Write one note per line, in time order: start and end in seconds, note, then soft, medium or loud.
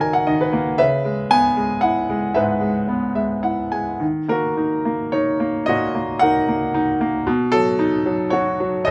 0.00 0.75 A#2 medium
0.00 0.27 D#3 soft
0.00 0.53 A#3 soft
0.00 0.23 F#4 medium
0.00 0.76 A#4 soft
0.00 0.80 C#5 medium
0.00 0.27 D#5 medium
0.00 0.13 G#5 medium
0.13 0.25 F#5 medium
0.27 0.77 D#3 medium
0.27 0.39 D#5 medium
0.41 0.76 B4 medium
0.53 0.78 A#3 medium
0.78 2.31 C#3 medium
0.78 1.52 B4 medium
0.78 1.27 E5 medium
1.05 1.55 G#3 soft
1.30 2.32 B3 medium
1.30 1.84 G#5 loud
1.57 2.08 G#3 soft
1.81 2.86 E4 soft
1.81 2.31 F#5 medium
2.10 2.59 G#3 medium
2.34 3.97 G#2 medium
2.34 3.69 B4 medium
2.34 3.14 E5 medium
2.61 3.14 G#3 soft
2.88 3.98 B3 soft
3.15 3.71 G#3 soft
3.15 3.42 E5 soft
3.43 3.99 E4 soft
3.43 3.70 F#5 medium
3.72 4.00 G#3 soft
3.72 3.99 G#5 medium
4.00 5.62 D#3 soft
4.28 4.84 A#3 soft
4.28 5.10 F#4 soft
4.28 5.15 A#4 medium
4.57 5.11 D#4 soft
4.85 5.38 A#3 soft
5.12 6.18 D#4 soft
5.12 5.68 C#5 medium
5.40 5.93 A#3 medium
5.66 7.23 A#2 medium
5.66 6.44 F#4 medium
5.66 6.22 D#5 medium
5.95 6.47 A#3 soft
6.19 6.73 D#4 medium
6.19 6.97 A#4 medium
6.19 6.96 F#5 medium
6.48 6.99 A#3 soft
6.74 7.25 D#4 medium
7.01 7.26 A#3 medium
7.27 8.82 B2 medium
7.52 8.04 F#3 soft
7.52 8.01 A4 loud
7.79 8.83 D#4 medium
8.06 8.59 F#3 medium
8.30 8.91 F#4 medium
8.30 8.87 C#5 medium
8.60 8.91 F#3 medium
8.85 8.91 F#2 medium
8.85 8.91 A4 medium
8.85 8.91 D#5 medium